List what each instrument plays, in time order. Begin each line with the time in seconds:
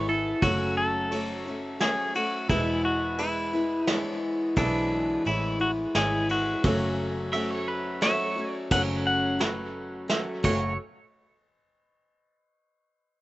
Already playing: fingered electric bass G#1, upright piano E4 G#4 B4
0.08 steel-string acoustic guitar E3 B3 E4, clean electric guitar A4
0.41 fingered electric bass F#1, steel-string acoustic guitar F#2 C#3 F#3 A3 C#4 F#4, upright piano F#4 A4 C#5, clean electric guitar F#4, kick, ride
0.77 clean electric guitar A4
1.10 steel-string acoustic guitar F#3 A3 C#4, upright piano F#4 A4 C#5, ride
1.15 steel-string acoustic guitar F#4
1.46 steel-string acoustic guitar F#3 A3 C#4 F#4
1.79 steel-string acoustic guitar F#3 A3 C#4 F#4, upright piano A3 F#4 C#5, clean electric guitar G#4, snare, ride
2.14 steel-string acoustic guitar F#3 A3 C#4 F#4, clean electric guitar F#4, ride
2.48 fingered electric bass E1, steel-string acoustic guitar E2 B2 E3 G#3 B3 E4, upright piano E4 G#4 B4, clean electric guitar E4, kick, ride
2.85 clean electric guitar F#4
3.18 steel-string acoustic guitar E3 G#3 B3 E4, upright piano E4 G#4 B4, clean electric guitar E4, ride
3.53 steel-string acoustic guitar E3 G#3 B3 E4
3.87 steel-string acoustic guitar E3 G#3 B3 E4, clean electric guitar D4, upright piano E4 G#4 C#5, snare, ride
4.56 fingered electric bass B1, steel-string acoustic guitar E2 B2 E3 G#3 B3 E4, clean electric guitar D4, upright piano E4 G#4 B4, kick, ride
5.25 fingered electric bass A1, steel-string acoustic guitar E3 G#3 B3 E4, upright piano E4 G#4 C#5, clean electric guitar E4, ride
5.60 steel-string acoustic guitar E3 G#3 B3 E4, clean electric guitar F#4
5.95 fingered electric bass G#1, steel-string acoustic guitar E3 G#3 B3 E4, upright piano E4 G#4 C#5, clean electric guitar G#4, snare, ride
6.29 steel-string acoustic guitar E3 G#3 B3 E4, clean electric guitar F#4, ride
6.64 fingered electric bass F#1, steel-string acoustic guitar F#2 C#3 F#3 A3 C#4 F#4, upright piano F#4 A4 C#5, kick, ride
7.33 steel-string acoustic guitar F#3 A3 C#4 F#4, upright piano F#4 A4 E5, clean electric guitar E5, ride
7.51 clean electric guitar C#5
7.68 clean electric guitar B4
8.01 steel-string acoustic guitar F#3 A3 C#4 F#4, upright piano F#4 A4 C#5, clean electric guitar C#5 E5, snare, ride
8.36 steel-string acoustic guitar F#3 A3 C#4 F#4
8.51 clean electric guitar D5
8.71 fingered electric bass F#1, steel-string acoustic guitar F#2 C#3 F#3 A3 C#4 F#4, upright piano F#4 A4 C#5, clean electric guitar F#5, kick, crash
9.07 clean electric guitar F#5
9.39 steel-string acoustic guitar F#3 A3 C#4 F#4, upright piano F#4 A4 B4, snare, closed hi-hat
10.08 steel-string acoustic guitar F#3 A3 C#4 F#4, upright piano F#4 A4 E5, snare, closed hi-hat
10.43 fingered electric bass F#1, steel-string acoustic guitar F#2 C#3 F#3 A3 C#4 F#4, upright piano F#4 A4 C#5, clean electric guitar C#5, kick, crash